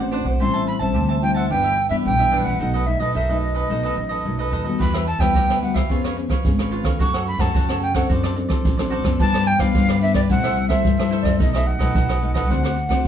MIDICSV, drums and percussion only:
0, 0, Header, 1, 2, 480
1, 0, Start_track
1, 0, Key_signature, 1, "minor"
1, 0, Tempo, 549451
1, 355, Time_signature, 4, 2, 24, 8
1, 11423, End_track
2, 0, Start_track
2, 0, Title_t, "Drums"
2, 4195, Note_on_c, 9, 36, 70
2, 4195, Note_on_c, 9, 42, 63
2, 4282, Note_off_c, 9, 36, 0
2, 4282, Note_off_c, 9, 42, 0
2, 4318, Note_on_c, 9, 37, 74
2, 4405, Note_off_c, 9, 37, 0
2, 4429, Note_on_c, 9, 42, 49
2, 4517, Note_off_c, 9, 42, 0
2, 4545, Note_on_c, 9, 36, 64
2, 4547, Note_on_c, 9, 37, 66
2, 4632, Note_off_c, 9, 36, 0
2, 4634, Note_off_c, 9, 37, 0
2, 4676, Note_on_c, 9, 36, 85
2, 4679, Note_on_c, 9, 42, 63
2, 4764, Note_off_c, 9, 36, 0
2, 4766, Note_off_c, 9, 42, 0
2, 4804, Note_on_c, 9, 37, 63
2, 4891, Note_off_c, 9, 37, 0
2, 4915, Note_on_c, 9, 42, 47
2, 5002, Note_off_c, 9, 42, 0
2, 5026, Note_on_c, 9, 36, 71
2, 5029, Note_on_c, 9, 37, 69
2, 5113, Note_off_c, 9, 36, 0
2, 5116, Note_off_c, 9, 37, 0
2, 5156, Note_on_c, 9, 36, 60
2, 5158, Note_on_c, 9, 42, 61
2, 5244, Note_off_c, 9, 36, 0
2, 5245, Note_off_c, 9, 42, 0
2, 5280, Note_on_c, 9, 37, 66
2, 5367, Note_off_c, 9, 37, 0
2, 5391, Note_on_c, 9, 42, 49
2, 5478, Note_off_c, 9, 42, 0
2, 5504, Note_on_c, 9, 36, 68
2, 5505, Note_on_c, 9, 37, 62
2, 5591, Note_off_c, 9, 36, 0
2, 5592, Note_off_c, 9, 37, 0
2, 5631, Note_on_c, 9, 42, 65
2, 5634, Note_on_c, 9, 36, 89
2, 5718, Note_off_c, 9, 42, 0
2, 5722, Note_off_c, 9, 36, 0
2, 5756, Note_on_c, 9, 37, 67
2, 5844, Note_off_c, 9, 37, 0
2, 5867, Note_on_c, 9, 42, 49
2, 5954, Note_off_c, 9, 42, 0
2, 5981, Note_on_c, 9, 37, 67
2, 5981, Note_on_c, 9, 42, 30
2, 5983, Note_on_c, 9, 36, 68
2, 6068, Note_off_c, 9, 37, 0
2, 6068, Note_off_c, 9, 42, 0
2, 6071, Note_off_c, 9, 36, 0
2, 6115, Note_on_c, 9, 36, 71
2, 6115, Note_on_c, 9, 42, 70
2, 6202, Note_off_c, 9, 42, 0
2, 6203, Note_off_c, 9, 36, 0
2, 6238, Note_on_c, 9, 37, 72
2, 6238, Note_on_c, 9, 42, 35
2, 6326, Note_off_c, 9, 37, 0
2, 6326, Note_off_c, 9, 42, 0
2, 6350, Note_on_c, 9, 42, 47
2, 6438, Note_off_c, 9, 42, 0
2, 6463, Note_on_c, 9, 37, 61
2, 6464, Note_on_c, 9, 36, 63
2, 6550, Note_off_c, 9, 37, 0
2, 6551, Note_off_c, 9, 36, 0
2, 6594, Note_on_c, 9, 42, 69
2, 6595, Note_on_c, 9, 36, 86
2, 6681, Note_off_c, 9, 42, 0
2, 6683, Note_off_c, 9, 36, 0
2, 6718, Note_on_c, 9, 37, 66
2, 6806, Note_off_c, 9, 37, 0
2, 6825, Note_on_c, 9, 42, 54
2, 6912, Note_off_c, 9, 42, 0
2, 6941, Note_on_c, 9, 37, 71
2, 6941, Note_on_c, 9, 42, 34
2, 6943, Note_on_c, 9, 36, 63
2, 7029, Note_off_c, 9, 37, 0
2, 7029, Note_off_c, 9, 42, 0
2, 7031, Note_off_c, 9, 36, 0
2, 7072, Note_on_c, 9, 42, 68
2, 7075, Note_on_c, 9, 36, 65
2, 7159, Note_off_c, 9, 42, 0
2, 7162, Note_off_c, 9, 36, 0
2, 7197, Note_on_c, 9, 37, 72
2, 7284, Note_off_c, 9, 37, 0
2, 7309, Note_on_c, 9, 42, 54
2, 7397, Note_off_c, 9, 42, 0
2, 7424, Note_on_c, 9, 37, 65
2, 7425, Note_on_c, 9, 36, 67
2, 7512, Note_off_c, 9, 36, 0
2, 7512, Note_off_c, 9, 37, 0
2, 7556, Note_on_c, 9, 42, 64
2, 7557, Note_on_c, 9, 36, 84
2, 7643, Note_off_c, 9, 42, 0
2, 7644, Note_off_c, 9, 36, 0
2, 7679, Note_on_c, 9, 37, 76
2, 7766, Note_off_c, 9, 37, 0
2, 7789, Note_on_c, 9, 42, 47
2, 7876, Note_off_c, 9, 42, 0
2, 7903, Note_on_c, 9, 37, 69
2, 7905, Note_on_c, 9, 36, 68
2, 7990, Note_off_c, 9, 37, 0
2, 7992, Note_off_c, 9, 36, 0
2, 8034, Note_on_c, 9, 42, 66
2, 8036, Note_on_c, 9, 36, 71
2, 8121, Note_off_c, 9, 42, 0
2, 8124, Note_off_c, 9, 36, 0
2, 8158, Note_on_c, 9, 37, 72
2, 8246, Note_off_c, 9, 37, 0
2, 8268, Note_on_c, 9, 42, 48
2, 8356, Note_off_c, 9, 42, 0
2, 8381, Note_on_c, 9, 37, 68
2, 8385, Note_on_c, 9, 36, 65
2, 8468, Note_off_c, 9, 37, 0
2, 8472, Note_off_c, 9, 36, 0
2, 8512, Note_on_c, 9, 42, 69
2, 8516, Note_on_c, 9, 36, 81
2, 8600, Note_off_c, 9, 42, 0
2, 8603, Note_off_c, 9, 36, 0
2, 8636, Note_on_c, 9, 37, 70
2, 8723, Note_off_c, 9, 37, 0
2, 8747, Note_on_c, 9, 42, 50
2, 8834, Note_off_c, 9, 42, 0
2, 8859, Note_on_c, 9, 37, 64
2, 8863, Note_on_c, 9, 36, 64
2, 8947, Note_off_c, 9, 37, 0
2, 8951, Note_off_c, 9, 36, 0
2, 8991, Note_on_c, 9, 42, 58
2, 8995, Note_on_c, 9, 36, 62
2, 9078, Note_off_c, 9, 42, 0
2, 9083, Note_off_c, 9, 36, 0
2, 9117, Note_on_c, 9, 37, 66
2, 9205, Note_off_c, 9, 37, 0
2, 9227, Note_on_c, 9, 42, 47
2, 9314, Note_off_c, 9, 42, 0
2, 9344, Note_on_c, 9, 37, 70
2, 9345, Note_on_c, 9, 36, 67
2, 9432, Note_off_c, 9, 37, 0
2, 9433, Note_off_c, 9, 36, 0
2, 9477, Note_on_c, 9, 42, 66
2, 9478, Note_on_c, 9, 36, 93
2, 9564, Note_off_c, 9, 42, 0
2, 9565, Note_off_c, 9, 36, 0
2, 9604, Note_on_c, 9, 37, 71
2, 9691, Note_off_c, 9, 37, 0
2, 9715, Note_on_c, 9, 42, 47
2, 9802, Note_off_c, 9, 42, 0
2, 9828, Note_on_c, 9, 36, 67
2, 9828, Note_on_c, 9, 37, 65
2, 9828, Note_on_c, 9, 42, 29
2, 9915, Note_off_c, 9, 36, 0
2, 9915, Note_off_c, 9, 37, 0
2, 9915, Note_off_c, 9, 42, 0
2, 9959, Note_on_c, 9, 36, 74
2, 9960, Note_on_c, 9, 42, 70
2, 10046, Note_off_c, 9, 36, 0
2, 10047, Note_off_c, 9, 42, 0
2, 10086, Note_on_c, 9, 37, 71
2, 10086, Note_on_c, 9, 42, 33
2, 10173, Note_off_c, 9, 37, 0
2, 10173, Note_off_c, 9, 42, 0
2, 10196, Note_on_c, 9, 42, 48
2, 10284, Note_off_c, 9, 42, 0
2, 10309, Note_on_c, 9, 36, 61
2, 10311, Note_on_c, 9, 37, 64
2, 10396, Note_off_c, 9, 36, 0
2, 10398, Note_off_c, 9, 37, 0
2, 10441, Note_on_c, 9, 36, 88
2, 10444, Note_on_c, 9, 42, 66
2, 10528, Note_off_c, 9, 36, 0
2, 10532, Note_off_c, 9, 42, 0
2, 10564, Note_on_c, 9, 37, 67
2, 10652, Note_off_c, 9, 37, 0
2, 10675, Note_on_c, 9, 42, 50
2, 10762, Note_off_c, 9, 42, 0
2, 10789, Note_on_c, 9, 36, 67
2, 10789, Note_on_c, 9, 37, 65
2, 10789, Note_on_c, 9, 42, 31
2, 10876, Note_off_c, 9, 36, 0
2, 10877, Note_off_c, 9, 37, 0
2, 10877, Note_off_c, 9, 42, 0
2, 10919, Note_on_c, 9, 36, 65
2, 10920, Note_on_c, 9, 42, 62
2, 11007, Note_off_c, 9, 36, 0
2, 11007, Note_off_c, 9, 42, 0
2, 11048, Note_on_c, 9, 37, 75
2, 11135, Note_off_c, 9, 37, 0
2, 11158, Note_on_c, 9, 42, 52
2, 11246, Note_off_c, 9, 42, 0
2, 11270, Note_on_c, 9, 36, 65
2, 11272, Note_on_c, 9, 37, 68
2, 11357, Note_off_c, 9, 36, 0
2, 11360, Note_off_c, 9, 37, 0
2, 11423, End_track
0, 0, End_of_file